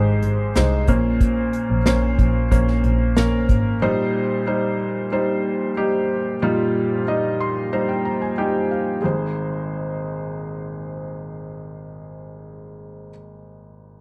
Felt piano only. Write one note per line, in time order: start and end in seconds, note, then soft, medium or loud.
0.00 0.90 G#2 medium
0.00 0.56 G#3 medium
0.00 0.56 D#4 medium
0.00 0.89 G4 medium
0.00 0.56 C5 loud
0.56 0.88 G#3 medium
0.56 0.88 D#4 medium
0.56 0.87 C5 medium
0.88 1.82 A#2 medium
0.88 1.77 A#3 medium
0.88 1.77 C#4 medium
0.88 1.77 C5 medium
1.86 2.45 A#3 medium
1.86 2.45 C#4 medium
1.86 2.45 C5 medium
2.51 3.10 A#3 medium
2.51 3.10 C#4 medium
2.51 3.10 C5 medium
3.16 3.76 A#3 medium
3.16 3.76 C#4 medium
3.16 3.76 A#4 medium
3.82 4.75 A#2 medium
3.82 4.41 G3 medium
3.82 4.41 D#4 medium
3.82 4.41 C5 loud
4.47 5.06 G3 medium
4.47 5.06 D#4 medium
4.47 5.06 C5 medium
5.12 5.71 G3 medium
5.12 5.71 D#4 medium
5.12 5.72 C5 medium
5.77 6.36 G3 medium
5.77 6.36 D#4 medium
5.77 6.36 G4 medium
6.42 7.36 A#2 medium
6.42 7.02 G3 medium
6.42 7.02 D#4 medium
6.42 7.02 F4 medium
7.08 7.67 G3 medium
7.08 7.67 D#4 medium
7.08 7.67 D#5 medium
7.40 7.71 C6 medium
7.73 8.32 G3 medium
7.73 8.32 D#4 medium
7.73 8.32 C5 medium
7.73 7.88 A#5 medium
7.89 8.04 G5 soft
8.05 8.20 A#5 medium
8.22 8.37 G#5 soft
8.38 8.97 G3 medium
8.38 8.97 D#4 medium
8.38 8.97 G4 medium
8.38 8.68 G5 medium
8.71 9.01 F5 soft
9.01 13.10 G#1 medium
9.01 13.09 G#3 medium
9.01 13.10 D#4 medium
9.01 13.11 C5 medium